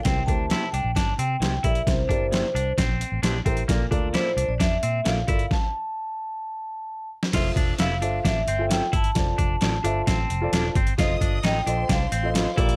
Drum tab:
CC |----------------|----------------|----------------|----------------|
HH |x-x-x-x-x-x-x-xx|x-x-x-x-x-x-x-xx|x-x-x-x-x-x-x-xx|----------------|
SD |o---o---o---o---|o---o---o---o---|o---o---o---o---|o--------------o|
BD |o-o-----o-----o-|o-o-----o-----o-|o-o-----o-----o-|o---------------|

CC |x---------------|----------------|----------------|
HH |x-x-x-x-x-x-x-xx|x-x-x-x-x-x-x-xx|x-x-x-x-x-x-x-xx|
SD |o---o---o---o---|o---o---o---o---|o---o---o---o---|
BD |o-o-----o-----o-|o-o-----o-----o-|o-o-----o-----o-|